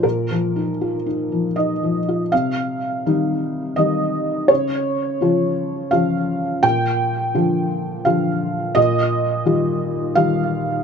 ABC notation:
X:1
M:3/4
L:1/8
Q:1/4=84
K:Cm
V:1 name="Felt piano"
B4 e2 | f4 e2 | _d4 f2 | g4 f2 |
e4 f2 |]
V:2 name="Felt piano" clef=bass
(3B,, F, E (3F E F, (3E F, F | C,2 [E,G,E]2 [E,G,E]2 | _D,2 [D,F,F]2 [D,F,F]2 | B,,2 [D,F,F]2 [D,F,F]2 |
B,,2 [E,G,F]2 [E,G,F]2 |]